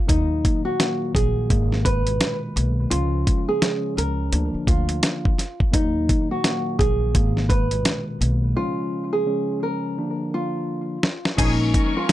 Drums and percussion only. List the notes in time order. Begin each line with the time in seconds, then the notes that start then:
0.09 kick, closed hi-hat
0.45 kick, closed hi-hat
0.80 snare, closed hi-hat
1.15 kick, closed hi-hat
1.50 kick, closed hi-hat
1.72 snare
1.85 kick, closed hi-hat
2.07 closed hi-hat
2.21 snare, closed hi-hat
2.57 closed hi-hat
2.91 closed hi-hat
3.27 kick, closed hi-hat
3.62 snare, closed hi-hat
3.98 closed hi-hat
4.33 closed hi-hat
4.67 kick, closed hi-hat
4.89 closed hi-hat
5.03 snare, closed hi-hat
5.25 kick
5.38 snare, closed hi-hat
5.60 kick
5.73 kick, closed hi-hat
6.09 kick, closed hi-hat
6.44 snare, closed hi-hat
6.79 kick, closed hi-hat
7.15 kick, closed hi-hat
7.37 snare
7.50 kick, closed hi-hat
7.71 closed hi-hat
7.85 snare, closed hi-hat
8.22 closed hi-hat
11.03 snare
11.25 snare
11.38 kick, closed hi-hat, crash
11.74 kick, closed hi-hat